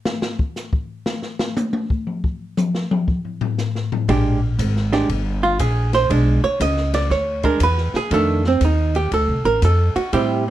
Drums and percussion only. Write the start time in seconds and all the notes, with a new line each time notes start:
0.05 snare
0.22 snare
0.39 kick
0.56 snare, hi-hat pedal
0.73 kick
1.06 snare
1.22 snare
1.39 snare
1.57 hi-hat pedal, high tom
1.73 high tom
1.90 kick
2.07 mid tom
2.24 kick
2.57 hi-hat pedal, mid tom
2.75 snare
2.91 mid tom
3.08 kick
3.25 floor tom
3.41 floor tom
3.58 snare, hi-hat pedal
3.75 snare
3.92 floor tom
4.09 kick, ride
4.59 kick, hi-hat pedal, ride
4.77 snare
4.93 snare, ride
5.09 kick, ride
5.59 kick, hi-hat pedal, ride
5.93 snare, ride
6.10 kick, ride
6.60 kick, hi-hat pedal, ride
6.77 snare
6.93 snare, ride
7.10 kick, snare
7.43 kick, ride
7.60 kick, hi-hat pedal, ride
7.78 snare
7.94 snare
8.11 kick, ride
8.44 snare
8.61 kick, hi-hat pedal, ride
8.95 ride
9.12 kick, ride
9.62 kick, hi-hat pedal, ride
9.96 ride
10.13 kick, ride